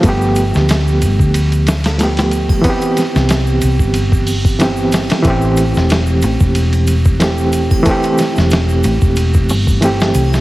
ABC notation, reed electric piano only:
X:1
M:4/4
L:1/8
Q:"Swing 16ths" 1/4=92
K:Ador
V:1 name="Reed electric piano"
[=F,A,B,G]6 [F,A,B,G]2 | [E,B,CG]6 [E,B,CG]2 | [E,A,CG]6 [E,A,CG]2 | [E,A,CG]6 [E,A,CG]2 |]